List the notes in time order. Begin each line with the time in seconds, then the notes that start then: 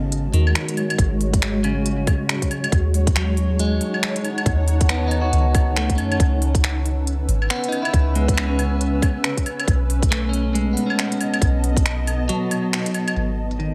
Already playing: G#1 C#3 G#3 F#4 C#5
0.12 closed hi-hat
0.33 D#2 D#3, open hi-hat
0.47 claves
0.55 finger snap, closed hi-hat
0.68 closed hi-hat
0.77 open hi-hat, claves
0.90 closed hi-hat, claves
0.98 G#1, kick, closed hi-hat
1.21 open hi-hat
1.33 kick, closed hi-hat
1.42 finger snap, closed hi-hat
1.64 C#3, open hi-hat, claves
1.86 closed hi-hat
2.07 kick, open hi-hat, claves
2.29 finger snap, closed hi-hat
2.42 kick, closed hi-hat
2.51 open hi-hat, claves
2.64 closed hi-hat, claves
2.72 D#2 D#4 F#5 A5, kick, closed hi-hat
2.94 open hi-hat
3.07 kick, closed hi-hat
3.16 F#3, finger snap, closed hi-hat
3.37 open hi-hat
3.59 G#3, closed hi-hat
3.81 open hi-hat
3.94 claves
4.03 finger snap, closed hi-hat
4.16 closed hi-hat
4.25 open hi-hat, claves
4.38 closed hi-hat, claves
4.46 D#2, kick, closed hi-hat
4.68 open hi-hat
4.81 kick, closed hi-hat
4.89 B3, finger snap, closed hi-hat
5.08 D#4, open hi-hat, claves
5.21 F#4
5.33 C#2, closed hi-hat
5.55 kick, open hi-hat, claves
5.76 A3, finger snap, closed hi-hat
5.89 kick, closed hi-hat
5.95 F#2 C#4, open hi-hat, claves
6.12 closed hi-hat, claves
6.20 C#2 C#4 B4 E6, kick, closed hi-hat
6.42 open hi-hat
6.55 kick, closed hi-hat
6.64 finger snap, closed hi-hat
6.86 open hi-hat
7.07 closed hi-hat
7.28 G#1, open hi-hat
7.42 claves
7.50 B3, finger snap, closed hi-hat
7.64 closed hi-hat
7.68 D#4, open hi-hat, claves
7.82 E4, closed hi-hat, claves
7.93 C#2, kick, closed hi-hat
8.15 G#3, open hi-hat
8.28 kick, closed hi-hat
8.34 B3, finger snap, closed hi-hat
8.47 C#4
8.59 open hi-hat, claves
8.81 closed hi-hat
9.02 kick, open hi-hat, claves
9.24 finger snap, closed hi-hat
9.37 kick, closed hi-hat
9.46 open hi-hat, claves
9.60 closed hi-hat, claves
9.67 B1 B3 D#5 A5, kick, closed hi-hat
9.90 open hi-hat
10.02 kick, closed hi-hat
10.11 A3, finger snap, closed hi-hat
10.29 C#4
10.33 open hi-hat
10.55 G#3, closed hi-hat
10.73 B3, open hi-hat
10.86 C#4, claves
10.99 finger snap, closed hi-hat
11.12 closed hi-hat
11.21 open hi-hat, claves
11.34 closed hi-hat, claves
11.42 B1, kick, closed hi-hat
11.64 open hi-hat
11.77 kick, closed hi-hat
11.86 finger snap, closed hi-hat
12.07 open hi-hat, claves
12.29 F#3, closed hi-hat
12.51 open hi-hat, claves
12.73 finger snap, closed hi-hat
12.86 closed hi-hat
12.94 open hi-hat, claves
13.08 closed hi-hat, claves
13.16 G#1 G#3 F#4 C#5, closed hi-hat
13.51 closed hi-hat
13.59 D#3, closed hi-hat